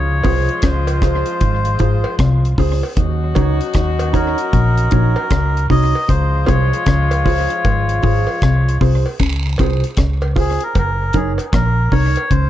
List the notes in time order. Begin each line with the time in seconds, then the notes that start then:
Already playing: C#2 F3 G#3 F4 C#5
0.23 C2 C3 F4 G#4 C5, kick, open hi-hat, cowbell
0.49 closed hi-hat
0.62 C#2 C#3 C5, kick, cross-stick, closed hi-hat
0.87 closed hi-hat, cowbell
1.02 F4 G#4 C5, kick, cross-stick, closed hi-hat
1.26 closed hi-hat
1.41 G#1 G#2, kick, closed hi-hat
1.65 closed hi-hat
1.79 G#1 G#2 F4 G#4 C5, kick, closed hi-hat
2.04 cowbell
2.19 C2 C3, kick, cross-stick, closed hi-hat
2.45 closed hi-hat
2.58 C#2 C#3 F4 G#4 C5, kick, open hi-hat
2.83 cowbell
2.97 D#2 D#3 F#3 C#4 D#4 F#4, kick, closed hi-hat
3.35 C#2 C#3 D#4 F#4 C#5, kick, closed hi-hat, cowbell
3.61 closed hi-hat
3.74 D#2 D#3, kick, cross-stick, closed hi-hat
3.99 closed hi-hat, cowbell
4.13 D#4 F#4 A#4 C#5, kick, closed hi-hat
4.38 closed hi-hat
4.53 A#1 A#2, kick, closed hi-hat
4.77 closed hi-hat
4.91 A#1 A#2 D#4 F#4 C#5, kick, closed hi-hat
5.16 cowbell
5.30 C#2 C#3, kick, cross-stick, closed hi-hat
5.57 closed hi-hat
5.70 C2 C3 D#4 F#4 C#5 D#5, kick, open hi-hat
5.95 cowbell
6.08 C#2 C#3 F3 G#3 F4 C5, kick, closed hi-hat
6.46 C2 C3 F4 G#4 C5 C#5, kick, closed hi-hat, cowbell
6.73 closed hi-hat
6.86 C#2 C#3, kick, cross-stick, closed hi-hat
7.11 closed hi-hat, cowbell
7.25 F4 G#4 C5, kick, open hi-hat
7.50 closed hi-hat
7.64 G#1 G#2, kick, closed hi-hat, cowbell
7.89 closed hi-hat
8.03 G#1 G#2 F4 G#4 C5, kick, open hi-hat
8.27 cowbell
8.42 C2 C3, kick, cross-stick, closed hi-hat
8.68 closed hi-hat
8.81 C2 C3 F4 G#4 C5, kick, open hi-hat
9.06 cowbell
9.20 C#2 C#3, kick, closed hi-hat, vibraslap
9.58 C2 C3 F4 G#4 C5, kick, closed hi-hat, cowbell
9.84 closed hi-hat
9.97 C#2 C#3, kick, cross-stick, closed hi-hat
10.22 cowbell
10.36 F4 G#4 C5, kick, open hi-hat
10.61 A#4, closed hi-hat
10.75 F#1 F#2 A#4, kick, closed hi-hat, cowbell
11.13 F#1 F#2 D#4 G#4 A#4 C#5, kick, closed hi-hat
11.38 closed hi-hat, cowbell
11.53 A#1 A#2 A#4, kick, cross-stick, closed hi-hat
11.92 C2 C3 D#4 A#4 C#5, kick, open hi-hat
12.16 closed hi-hat, cowbell
12.30 C#2 C#3 C5, kick, closed hi-hat